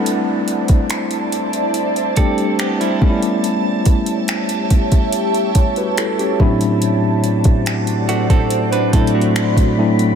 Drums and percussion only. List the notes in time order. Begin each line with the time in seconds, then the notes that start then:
0.06 closed hi-hat
0.48 closed hi-hat
0.68 kick, closed hi-hat
0.90 finger snap, closed hi-hat
1.11 closed hi-hat
1.32 closed hi-hat
1.53 closed hi-hat
1.74 closed hi-hat
1.96 closed hi-hat
2.16 kick, closed hi-hat
2.38 closed hi-hat
2.59 finger snap, closed hi-hat
2.81 closed hi-hat
3.02 kick
3.22 closed hi-hat
3.44 closed hi-hat
3.85 kick, closed hi-hat
4.06 closed hi-hat
4.28 finger snap, closed hi-hat
4.49 closed hi-hat
4.70 kick, closed hi-hat
4.92 kick, closed hi-hat
5.12 closed hi-hat
5.34 closed hi-hat
5.55 kick, closed hi-hat
5.76 closed hi-hat
5.97 finger snap, closed hi-hat
6.19 closed hi-hat
6.40 kick
6.61 closed hi-hat
6.82 closed hi-hat
7.24 closed hi-hat
7.44 kick, closed hi-hat
7.66 finger snap, closed hi-hat
7.87 closed hi-hat
8.09 closed hi-hat
8.30 kick, closed hi-hat
8.50 closed hi-hat
8.73 closed hi-hat
8.93 kick, closed hi-hat
9.07 closed hi-hat
9.21 closed hi-hat
9.36 finger snap, closed hi-hat
9.57 kick, closed hi-hat
9.99 closed hi-hat